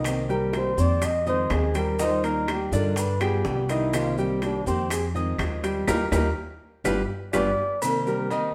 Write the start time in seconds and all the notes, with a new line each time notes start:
Already playing: C2 D#3 D#4 D#5
0.04 C3 D#3 A#3 C4 G4, high bongo, high timbale, claves, maracas
0.29 G3 G4 A#4 G5, maracas
0.53 D#3 A#3 C4 G4 C5, high bongo, high timbale, maracas
0.77 F2 D#3 A#3 C4 G4 C5 D5 C6, high bongo, maracas
1.02 D#5, muted steel-string acoustic guitar stroke, high bongo, high timbale, claves, maracas
1.26 D#3 G#3 C4 D#4 F4 C5 D#5 D#6, high bongo, maracas
1.50 D#2 D#3 G#3 C4 F4 G#4, high bongo, low bongo, high timbale, low timbale, claves, maracas
1.74 G3 G4 A#4 G5, high bongo, high timbale, maracas
1.99 D#3 G3 D#4 F4 C5 D#5, high bongo, maracas
2.24 A#3 D#4 A#4 A#5, high bongo, high timbale, maracas
2.48 D#3 G3 D#4 F4 G4, high bongo, high timbale, claves, maracas
2.72 G2 D3 G3 D4 D#4 F4 A#4 D5, high bongo, maracas
2.96 B4, muted steel-string acoustic guitar stroke, high bongo, high timbale, maracas
3.20 G3 B3 F4 G4 G#4 G5, high bongo, high timbale, claves, maracas
3.45 C2 G3 B3 F4 G4, high bongo, low bongo, maracas
3.69 D#3 D#4 E4 D#5, high timbale, maracas
3.93 C3 D#3 A#3 C4 F4 G4, high bongo, high timbale, claves, maracas
4.18 G3 A#3 G4 G5, maracas
4.42 D#3 A#3 C4 D4 G4, high bongo, high timbale, maracas
4.66 F2 D#3 A#3 C4 G4 C5 C6, high bongo, maracas
4.90 G#4, muted steel-string acoustic guitar stroke, high bongo, high timbale, claves, maracas
5.15 D#3 G#3 C4 D#4 F4 D#5 D#6, high bongo, maracas
5.38 D#2 D#3 G#3 C4 F4, high bongo, low bongo, high timbale, claves, maracas
5.63 G3 G4 G5, high bongo, high timbale, maracas
5.87 D#2 G3 A#3 D#4 F4 G4 A#4, high bongo, high timbale, claves, maracas
6.11 D#2 G3 A#3 D#4 F4 G4 A#4, high bongo, high timbale, claves, maracas
6.84 G1 G3 B3 D4 F4 G4 B4, high bongo, high timbale, claves, maracas
7.33 G1 G3 B3 D4 F4 G4 B4 D5, high bongo, high timbale, claves, maracas
7.82 C3 D#3 A#3 C4 G4 A#4, cowbell, low agogo, claves, maracas
8.06 G3 G4 A#4, maracas
8.30 D#3 A#3 C4 D#4 G4 D#5, cowbell, low agogo, maracas